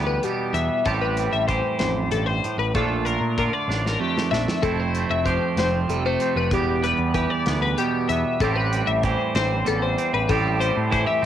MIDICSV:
0, 0, Header, 1, 5, 480
1, 0, Start_track
1, 0, Key_signature, 0, "minor"
1, 0, Tempo, 628272
1, 664, Time_signature, 6, 3, 24, 8
1, 8599, End_track
2, 0, Start_track
2, 0, Title_t, "Clean electric guitar"
2, 0, Program_c, 0, 27
2, 51, Note_on_c, 0, 71, 58
2, 181, Note_off_c, 0, 71, 0
2, 181, Note_on_c, 0, 67, 67
2, 414, Note_on_c, 0, 76, 74
2, 423, Note_off_c, 0, 67, 0
2, 658, Note_on_c, 0, 69, 73
2, 659, Note_off_c, 0, 76, 0
2, 771, Note_off_c, 0, 69, 0
2, 774, Note_on_c, 0, 71, 59
2, 1013, Note_on_c, 0, 76, 62
2, 1019, Note_off_c, 0, 71, 0
2, 1125, Note_off_c, 0, 76, 0
2, 1128, Note_on_c, 0, 72, 67
2, 1360, Note_off_c, 0, 72, 0
2, 1369, Note_on_c, 0, 72, 61
2, 1612, Note_off_c, 0, 72, 0
2, 1616, Note_on_c, 0, 69, 64
2, 1727, Note_off_c, 0, 69, 0
2, 1727, Note_on_c, 0, 72, 58
2, 1975, Note_off_c, 0, 72, 0
2, 1978, Note_on_c, 0, 71, 55
2, 2097, Note_off_c, 0, 71, 0
2, 2101, Note_on_c, 0, 69, 69
2, 2329, Note_off_c, 0, 69, 0
2, 2329, Note_on_c, 0, 70, 76
2, 2575, Note_off_c, 0, 70, 0
2, 2584, Note_on_c, 0, 70, 65
2, 2698, Note_off_c, 0, 70, 0
2, 2698, Note_on_c, 0, 74, 54
2, 2947, Note_off_c, 0, 74, 0
2, 2947, Note_on_c, 0, 70, 63
2, 3054, Note_off_c, 0, 70, 0
2, 3054, Note_on_c, 0, 67, 66
2, 3290, Note_off_c, 0, 67, 0
2, 3293, Note_on_c, 0, 76, 67
2, 3534, Note_on_c, 0, 69, 76
2, 3539, Note_off_c, 0, 76, 0
2, 3665, Note_off_c, 0, 69, 0
2, 3665, Note_on_c, 0, 72, 55
2, 3902, Note_on_c, 0, 76, 72
2, 3905, Note_off_c, 0, 72, 0
2, 4016, Note_on_c, 0, 72, 67
2, 4023, Note_off_c, 0, 76, 0
2, 4260, Note_off_c, 0, 72, 0
2, 4269, Note_on_c, 0, 72, 62
2, 4506, Note_off_c, 0, 72, 0
2, 4506, Note_on_c, 0, 69, 71
2, 4625, Note_off_c, 0, 69, 0
2, 4630, Note_on_c, 0, 72, 59
2, 4863, Note_off_c, 0, 72, 0
2, 4866, Note_on_c, 0, 71, 61
2, 4988, Note_off_c, 0, 71, 0
2, 4988, Note_on_c, 0, 67, 73
2, 5224, Note_on_c, 0, 71, 81
2, 5226, Note_off_c, 0, 67, 0
2, 5451, Note_off_c, 0, 71, 0
2, 5460, Note_on_c, 0, 71, 66
2, 5579, Note_off_c, 0, 71, 0
2, 5579, Note_on_c, 0, 74, 52
2, 5819, Note_off_c, 0, 74, 0
2, 5822, Note_on_c, 0, 71, 62
2, 5943, Note_off_c, 0, 71, 0
2, 5944, Note_on_c, 0, 67, 71
2, 6180, Note_on_c, 0, 76, 78
2, 6184, Note_off_c, 0, 67, 0
2, 6422, Note_off_c, 0, 76, 0
2, 6428, Note_on_c, 0, 69, 74
2, 6536, Note_off_c, 0, 69, 0
2, 6536, Note_on_c, 0, 71, 57
2, 6779, Note_on_c, 0, 76, 68
2, 6781, Note_off_c, 0, 71, 0
2, 6901, Note_off_c, 0, 76, 0
2, 6901, Note_on_c, 0, 72, 69
2, 7141, Note_off_c, 0, 72, 0
2, 7150, Note_on_c, 0, 72, 71
2, 7388, Note_off_c, 0, 72, 0
2, 7393, Note_on_c, 0, 69, 69
2, 7506, Note_on_c, 0, 72, 63
2, 7510, Note_off_c, 0, 69, 0
2, 7744, Note_off_c, 0, 72, 0
2, 7747, Note_on_c, 0, 71, 71
2, 7861, Note_on_c, 0, 69, 81
2, 7867, Note_off_c, 0, 71, 0
2, 8102, Note_on_c, 0, 72, 84
2, 8104, Note_off_c, 0, 69, 0
2, 8335, Note_off_c, 0, 72, 0
2, 8344, Note_on_c, 0, 72, 69
2, 8455, Note_off_c, 0, 72, 0
2, 8458, Note_on_c, 0, 76, 66
2, 8599, Note_off_c, 0, 76, 0
2, 8599, End_track
3, 0, Start_track
3, 0, Title_t, "Clean electric guitar"
3, 0, Program_c, 1, 27
3, 0, Note_on_c, 1, 40, 61
3, 0, Note_on_c, 1, 52, 59
3, 0, Note_on_c, 1, 55, 55
3, 0, Note_on_c, 1, 59, 58
3, 0, Note_on_c, 1, 67, 46
3, 183, Note_off_c, 1, 55, 0
3, 186, Note_on_c, 1, 47, 55
3, 192, Note_on_c, 1, 55, 55
3, 423, Note_off_c, 1, 59, 0
3, 432, Note_on_c, 1, 59, 44
3, 636, Note_off_c, 1, 47, 0
3, 636, Note_off_c, 1, 52, 0
3, 647, Note_off_c, 1, 55, 0
3, 650, Note_on_c, 1, 45, 72
3, 656, Note_on_c, 1, 55, 56
3, 661, Note_off_c, 1, 59, 0
3, 661, Note_off_c, 1, 67, 0
3, 664, Note_off_c, 1, 40, 0
3, 664, Note_on_c, 1, 60, 60
3, 670, Note_on_c, 1, 67, 59
3, 900, Note_off_c, 1, 55, 0
3, 911, Note_on_c, 1, 55, 54
3, 1136, Note_off_c, 1, 67, 0
3, 1138, Note_on_c, 1, 52, 52
3, 1145, Note_on_c, 1, 67, 54
3, 1382, Note_on_c, 1, 41, 62
3, 1623, Note_off_c, 1, 41, 0
3, 1638, Note_on_c, 1, 43, 56
3, 1857, Note_off_c, 1, 45, 0
3, 1867, Note_on_c, 1, 45, 57
3, 1871, Note_off_c, 1, 43, 0
3, 2072, Note_off_c, 1, 52, 0
3, 2075, Note_off_c, 1, 60, 0
3, 2076, Note_off_c, 1, 67, 0
3, 2093, Note_off_c, 1, 45, 0
3, 2096, Note_on_c, 1, 46, 68
3, 2098, Note_off_c, 1, 55, 0
3, 2101, Note_on_c, 1, 57, 64
3, 2107, Note_on_c, 1, 62, 57
3, 2112, Note_on_c, 1, 65, 65
3, 2580, Note_off_c, 1, 46, 0
3, 2587, Note_on_c, 1, 50, 52
3, 2589, Note_off_c, 1, 65, 0
3, 2592, Note_on_c, 1, 65, 50
3, 2811, Note_off_c, 1, 62, 0
3, 2820, Note_on_c, 1, 62, 62
3, 3052, Note_on_c, 1, 41, 64
3, 3059, Note_off_c, 1, 57, 0
3, 3062, Note_on_c, 1, 57, 55
3, 3298, Note_off_c, 1, 62, 0
3, 3307, Note_on_c, 1, 62, 50
3, 3509, Note_off_c, 1, 41, 0
3, 3514, Note_off_c, 1, 57, 0
3, 3517, Note_off_c, 1, 62, 0
3, 3520, Note_off_c, 1, 65, 0
3, 3531, Note_on_c, 1, 41, 75
3, 3537, Note_on_c, 1, 57, 51
3, 3542, Note_on_c, 1, 60, 61
3, 3546, Note_off_c, 1, 50, 0
3, 3549, Note_on_c, 1, 64, 64
3, 3779, Note_off_c, 1, 57, 0
3, 3789, Note_on_c, 1, 57, 56
3, 4018, Note_on_c, 1, 53, 57
3, 4020, Note_off_c, 1, 64, 0
3, 4023, Note_on_c, 1, 67, 53
3, 4263, Note_off_c, 1, 60, 0
3, 4271, Note_on_c, 1, 60, 59
3, 4500, Note_off_c, 1, 57, 0
3, 4500, Note_on_c, 1, 48, 63
3, 4503, Note_on_c, 1, 55, 49
3, 4626, Note_off_c, 1, 55, 0
3, 4626, Note_on_c, 1, 57, 50
3, 4741, Note_off_c, 1, 60, 0
3, 4750, Note_on_c, 1, 60, 53
3, 4949, Note_off_c, 1, 41, 0
3, 4952, Note_off_c, 1, 53, 0
3, 4954, Note_off_c, 1, 48, 0
3, 4955, Note_off_c, 1, 67, 0
3, 4959, Note_off_c, 1, 60, 0
3, 4984, Note_on_c, 1, 40, 80
3, 4985, Note_off_c, 1, 57, 0
3, 4991, Note_on_c, 1, 55, 48
3, 4992, Note_on_c, 1, 59, 53
3, 4998, Note_on_c, 1, 67, 57
3, 5214, Note_off_c, 1, 55, 0
3, 5217, Note_on_c, 1, 55, 54
3, 5455, Note_on_c, 1, 52, 55
3, 5460, Note_off_c, 1, 67, 0
3, 5463, Note_on_c, 1, 67, 57
3, 5694, Note_off_c, 1, 59, 0
3, 5703, Note_on_c, 1, 59, 59
3, 5947, Note_on_c, 1, 47, 63
3, 5949, Note_off_c, 1, 55, 0
3, 5952, Note_on_c, 1, 55, 51
3, 6184, Note_off_c, 1, 59, 0
3, 6207, Note_on_c, 1, 59, 51
3, 6397, Note_off_c, 1, 47, 0
3, 6425, Note_off_c, 1, 40, 0
3, 6432, Note_on_c, 1, 45, 75
3, 6436, Note_off_c, 1, 59, 0
3, 6437, Note_off_c, 1, 55, 0
3, 6441, Note_on_c, 1, 55, 61
3, 6444, Note_on_c, 1, 60, 66
3, 6445, Note_off_c, 1, 67, 0
3, 6448, Note_on_c, 1, 67, 66
3, 6678, Note_off_c, 1, 55, 0
3, 6681, Note_on_c, 1, 55, 55
3, 6908, Note_off_c, 1, 52, 0
3, 6911, Note_on_c, 1, 52, 60
3, 6913, Note_off_c, 1, 67, 0
3, 6916, Note_on_c, 1, 67, 46
3, 7140, Note_off_c, 1, 60, 0
3, 7143, Note_on_c, 1, 60, 61
3, 7376, Note_off_c, 1, 55, 0
3, 7376, Note_on_c, 1, 40, 62
3, 7379, Note_on_c, 1, 55, 56
3, 7389, Note_off_c, 1, 45, 0
3, 7624, Note_off_c, 1, 60, 0
3, 7627, Note_on_c, 1, 60, 54
3, 7862, Note_off_c, 1, 40, 0
3, 7865, Note_on_c, 1, 45, 80
3, 7868, Note_off_c, 1, 55, 0
3, 7871, Note_on_c, 1, 55, 65
3, 7874, Note_off_c, 1, 60, 0
3, 7877, Note_on_c, 1, 60, 59
3, 7880, Note_off_c, 1, 67, 0
3, 7884, Note_on_c, 1, 67, 74
3, 8100, Note_off_c, 1, 55, 0
3, 8109, Note_on_c, 1, 55, 58
3, 8326, Note_off_c, 1, 52, 0
3, 8329, Note_on_c, 1, 52, 67
3, 8335, Note_off_c, 1, 67, 0
3, 8338, Note_on_c, 1, 64, 59
3, 8453, Note_off_c, 1, 64, 0
3, 8453, Note_on_c, 1, 67, 52
3, 8565, Note_off_c, 1, 60, 0
3, 8574, Note_on_c, 1, 60, 59
3, 8599, Note_off_c, 1, 45, 0
3, 8599, Note_off_c, 1, 52, 0
3, 8599, Note_off_c, 1, 55, 0
3, 8599, Note_off_c, 1, 60, 0
3, 8599, Note_off_c, 1, 67, 0
3, 8599, End_track
4, 0, Start_track
4, 0, Title_t, "Picked electric bass"
4, 0, Program_c, 2, 34
4, 0, Note_on_c, 2, 38, 78
4, 143, Note_off_c, 2, 38, 0
4, 409, Note_on_c, 2, 40, 86
4, 519, Note_off_c, 2, 40, 0
4, 655, Note_on_c, 2, 33, 84
4, 970, Note_off_c, 2, 33, 0
4, 1015, Note_on_c, 2, 33, 67
4, 1227, Note_off_c, 2, 33, 0
4, 1374, Note_on_c, 2, 33, 79
4, 1586, Note_off_c, 2, 33, 0
4, 1610, Note_on_c, 2, 33, 68
4, 1824, Note_off_c, 2, 33, 0
4, 1967, Note_on_c, 2, 33, 78
4, 2099, Note_off_c, 2, 33, 0
4, 2099, Note_on_c, 2, 34, 79
4, 2413, Note_off_c, 2, 34, 0
4, 2449, Note_on_c, 2, 46, 78
4, 2664, Note_off_c, 2, 46, 0
4, 2807, Note_on_c, 2, 33, 81
4, 3022, Note_off_c, 2, 33, 0
4, 3298, Note_on_c, 2, 34, 81
4, 3404, Note_off_c, 2, 34, 0
4, 3535, Note_on_c, 2, 29, 77
4, 3851, Note_off_c, 2, 29, 0
4, 3897, Note_on_c, 2, 29, 74
4, 4108, Note_off_c, 2, 29, 0
4, 4249, Note_on_c, 2, 29, 90
4, 4463, Note_off_c, 2, 29, 0
4, 4497, Note_on_c, 2, 29, 67
4, 4708, Note_off_c, 2, 29, 0
4, 4856, Note_on_c, 2, 29, 73
4, 4978, Note_off_c, 2, 29, 0
4, 4978, Note_on_c, 2, 28, 82
4, 5292, Note_off_c, 2, 28, 0
4, 5336, Note_on_c, 2, 40, 74
4, 5547, Note_off_c, 2, 40, 0
4, 5703, Note_on_c, 2, 38, 77
4, 5912, Note_off_c, 2, 38, 0
4, 6181, Note_on_c, 2, 40, 90
4, 6286, Note_off_c, 2, 40, 0
4, 6418, Note_on_c, 2, 33, 79
4, 6733, Note_off_c, 2, 33, 0
4, 6783, Note_on_c, 2, 33, 70
4, 6992, Note_off_c, 2, 33, 0
4, 7141, Note_on_c, 2, 33, 94
4, 7351, Note_off_c, 2, 33, 0
4, 7395, Note_on_c, 2, 33, 73
4, 7599, Note_off_c, 2, 33, 0
4, 7742, Note_on_c, 2, 33, 75
4, 7848, Note_off_c, 2, 33, 0
4, 7863, Note_on_c, 2, 33, 82
4, 8177, Note_off_c, 2, 33, 0
4, 8227, Note_on_c, 2, 45, 86
4, 8436, Note_off_c, 2, 45, 0
4, 8599, End_track
5, 0, Start_track
5, 0, Title_t, "Drums"
5, 176, Note_on_c, 9, 42, 56
5, 253, Note_off_c, 9, 42, 0
5, 416, Note_on_c, 9, 42, 55
5, 492, Note_off_c, 9, 42, 0
5, 653, Note_on_c, 9, 42, 74
5, 655, Note_on_c, 9, 36, 100
5, 729, Note_off_c, 9, 42, 0
5, 731, Note_off_c, 9, 36, 0
5, 893, Note_on_c, 9, 42, 63
5, 969, Note_off_c, 9, 42, 0
5, 1135, Note_on_c, 9, 36, 67
5, 1135, Note_on_c, 9, 42, 57
5, 1211, Note_off_c, 9, 42, 0
5, 1212, Note_off_c, 9, 36, 0
5, 1368, Note_on_c, 9, 42, 75
5, 1375, Note_on_c, 9, 38, 90
5, 1444, Note_off_c, 9, 42, 0
5, 1452, Note_off_c, 9, 38, 0
5, 1613, Note_on_c, 9, 42, 53
5, 1690, Note_off_c, 9, 42, 0
5, 1863, Note_on_c, 9, 42, 51
5, 1939, Note_off_c, 9, 42, 0
5, 2096, Note_on_c, 9, 42, 70
5, 2098, Note_on_c, 9, 36, 96
5, 2173, Note_off_c, 9, 42, 0
5, 2175, Note_off_c, 9, 36, 0
5, 2338, Note_on_c, 9, 42, 54
5, 2415, Note_off_c, 9, 42, 0
5, 2579, Note_on_c, 9, 36, 64
5, 2580, Note_on_c, 9, 42, 48
5, 2656, Note_off_c, 9, 36, 0
5, 2656, Note_off_c, 9, 42, 0
5, 2829, Note_on_c, 9, 38, 44
5, 2905, Note_off_c, 9, 38, 0
5, 2950, Note_on_c, 9, 38, 49
5, 3026, Note_off_c, 9, 38, 0
5, 3189, Note_on_c, 9, 38, 61
5, 3266, Note_off_c, 9, 38, 0
5, 3308, Note_on_c, 9, 38, 69
5, 3385, Note_off_c, 9, 38, 0
5, 3426, Note_on_c, 9, 38, 80
5, 3502, Note_off_c, 9, 38, 0
5, 3538, Note_on_c, 9, 36, 96
5, 3540, Note_on_c, 9, 42, 64
5, 3614, Note_off_c, 9, 36, 0
5, 3616, Note_off_c, 9, 42, 0
5, 3780, Note_on_c, 9, 42, 54
5, 3856, Note_off_c, 9, 42, 0
5, 4017, Note_on_c, 9, 36, 70
5, 4019, Note_on_c, 9, 42, 53
5, 4093, Note_off_c, 9, 36, 0
5, 4096, Note_off_c, 9, 42, 0
5, 4258, Note_on_c, 9, 42, 72
5, 4265, Note_on_c, 9, 38, 87
5, 4334, Note_off_c, 9, 42, 0
5, 4342, Note_off_c, 9, 38, 0
5, 4503, Note_on_c, 9, 42, 58
5, 4580, Note_off_c, 9, 42, 0
5, 4737, Note_on_c, 9, 42, 57
5, 4813, Note_off_c, 9, 42, 0
5, 4976, Note_on_c, 9, 36, 97
5, 4976, Note_on_c, 9, 42, 78
5, 5052, Note_off_c, 9, 36, 0
5, 5053, Note_off_c, 9, 42, 0
5, 5222, Note_on_c, 9, 42, 62
5, 5298, Note_off_c, 9, 42, 0
5, 5458, Note_on_c, 9, 36, 64
5, 5461, Note_on_c, 9, 42, 53
5, 5534, Note_off_c, 9, 36, 0
5, 5537, Note_off_c, 9, 42, 0
5, 5698, Note_on_c, 9, 42, 72
5, 5706, Note_on_c, 9, 38, 93
5, 5775, Note_off_c, 9, 42, 0
5, 5782, Note_off_c, 9, 38, 0
5, 5941, Note_on_c, 9, 42, 53
5, 6018, Note_off_c, 9, 42, 0
5, 6182, Note_on_c, 9, 42, 58
5, 6258, Note_off_c, 9, 42, 0
5, 6421, Note_on_c, 9, 36, 97
5, 6421, Note_on_c, 9, 42, 76
5, 6497, Note_off_c, 9, 36, 0
5, 6497, Note_off_c, 9, 42, 0
5, 6667, Note_on_c, 9, 42, 58
5, 6743, Note_off_c, 9, 42, 0
5, 6901, Note_on_c, 9, 42, 55
5, 6902, Note_on_c, 9, 36, 66
5, 6977, Note_off_c, 9, 42, 0
5, 6979, Note_off_c, 9, 36, 0
5, 7143, Note_on_c, 9, 42, 67
5, 7151, Note_on_c, 9, 38, 100
5, 7219, Note_off_c, 9, 42, 0
5, 7227, Note_off_c, 9, 38, 0
5, 7383, Note_on_c, 9, 42, 54
5, 7459, Note_off_c, 9, 42, 0
5, 7628, Note_on_c, 9, 42, 55
5, 7704, Note_off_c, 9, 42, 0
5, 7864, Note_on_c, 9, 36, 106
5, 7868, Note_on_c, 9, 42, 70
5, 7941, Note_off_c, 9, 36, 0
5, 7945, Note_off_c, 9, 42, 0
5, 8108, Note_on_c, 9, 42, 58
5, 8184, Note_off_c, 9, 42, 0
5, 8347, Note_on_c, 9, 36, 75
5, 8348, Note_on_c, 9, 42, 59
5, 8423, Note_off_c, 9, 36, 0
5, 8425, Note_off_c, 9, 42, 0
5, 8599, End_track
0, 0, End_of_file